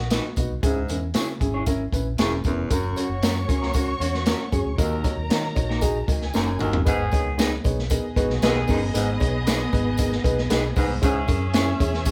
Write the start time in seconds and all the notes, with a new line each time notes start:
Already playing: A#1 D#3 B3 F#4
0.10 B3 D#4 F#4 B4, snare, closed hi-hat, tambourine
0.36 B1 B3 D#4 F#4, kick, closed hi-hat, tambourine
0.50 C2
0.63 C#2 G#2 C#4 E4 G#4, kick, closed hi-hat, tambourine
0.88 E2 C#4 E4 A#4, closed hi-hat, tambourine
1.14 C#3 C#4 E4 F#4 G#4 C#5, snare, closed hi-hat, tambourine
1.40 G#1 C#4 E4 G#4, kick, closed hi-hat, tambourine
1.54 C#4 E4 G#4 C#5
1.66 C#4 E4 A#4, kick, closed hi-hat, tambourine
1.93 A#1 C#4 E4 B4, kick, closed hi-hat, tambourine
2.18 E1 F#2 C#4 E4 G#4 C#5, snare, closed hi-hat, tambourine
2.44 F1 E2 C#4 E4 A#4, kick, closed hi-hat, tambourine
2.70 F#1 F#2 C#4 F#4 A#4 C#5 C#6, kick, closed hi-hat, tambourine
2.96 C#3 A#3 C#4 F#4 C#5, closed hi-hat, tambourine
3.09 F#1
3.22 F#2 A#3 C#4 F#4 A#4 C#5, snare, closed hi-hat, tambourine
3.48 C#2 G#3 C#4 E4 F#4 G#4 A#4, kick, closed hi-hat, tambourine
3.62 A#3 C#4 F#4 A#4, snare
3.74 C#3 A#3 C#4 F#4 A#4, kick, closed hi-hat, tambourine
4.00 E2 C#3 A#3 C#4 F#4 C#5, closed hi-hat, tambourine
4.14 snare
4.26 A#3 C#4 F#4 A#4, snare, closed hi-hat, tambourine
4.52 F#2 C#4 F#4 G#4, kick, closed hi-hat, tambourine
4.65 D2
4.78 D#2 D#4 F#4 A#4 A#5, kick, closed hi-hat, tambourine
5.04 D#4 F#4 C#5, kick, closed hi-hat, tambourine
5.17 D#2
5.29 D#3 A#3 D#4 F#4 A#4 C#5, snare, closed hi-hat, tambourine
5.55 A#1 D#4 F#4 C#5, kick, closed hi-hat, tambourine
5.69 A#3 D#4 F#4 A#4, snare
5.81 D#4 F#4 G#4, kick, closed hi-hat, tambourine
6.08 C#2 D#4 F#4 G#4 A#4 G#5, kick, closed hi-hat, tambourine
6.22 snare
6.34 F#1 F#2 A#3 D#4 F#4 A#4, snare, tambourine
6.59 G1 D#2 D#4 F#4 A#4, mid tom, tambourine
6.73 floor tom
6.85 G#1 G#2 D#3 B3 D#4 G#4 B4, kick, closed hi-hat, tambourine
7.11 C#2 B3 D#4 G#4 C#5, kick, closed hi-hat, tambourine
7.37 B3 D#4 G#4 B4 C#5, snare, closed hi-hat, tambourine
7.64 B1 B3 D#4 G#4 C#5, kick, closed hi-hat, tambourine
7.79 snare
7.90 B3 D#4 G#4 A#4 D#5, kick, closed hi-hat, tambourine
8.16 G#1 F#3 B3 D#4 F#4 G#4 B4, kick, closed hi-hat, tambourine
8.30 B1, snare
8.42 B1 D#2 D#3 B3 D#4 G#4 B4, snare, closed hi-hat, tambourine
8.68 G1 F#2 B3 D#4 G#4 A#4 B4, kick, open hi-hat, tambourine
8.94 G#1 G#2 B3 D#4 G#4 B4, closed hi-hat, tambourine
9.19 B1 B3 D#4 G#4 C#5, kick, closed hi-hat, tambourine
9.46 B3 D#4 G#4 B4 C#5, snare, closed hi-hat, tambourine
9.72 G#1 B3 D#4 G#4 B4, kick, closed hi-hat, tambourine
9.97 B3 D#4 G#4 A#4, kick, closed hi-hat, tambourine
10.12 snare
10.24 B1 B3 D#4 G#4 B4, kick, closed hi-hat, tambourine
10.38 snare
10.50 B1 B3 D#4 G#4 B4, snare, closed hi-hat, tambourine
10.76 C2 G#2 B3 D#4 G#4 B4, kick, open hi-hat, tambourine
11.01 C#2 G#2 E3 C#4 E4 G#4 C#5 E5, kick, closed hi-hat, tambourine
11.28 F#2 C#4 E4 G#4 A#4, kick, closed hi-hat, tambourine
11.54 C#4 E4 G#4 C#5, snare, closed hi-hat, tambourine
11.80 E2 C#4 E4 G#4 C#5, kick, closed hi-hat, tambourine
11.94 snare
12.05 C#4 E4 G#4 C#5, kick, closed hi-hat, tambourine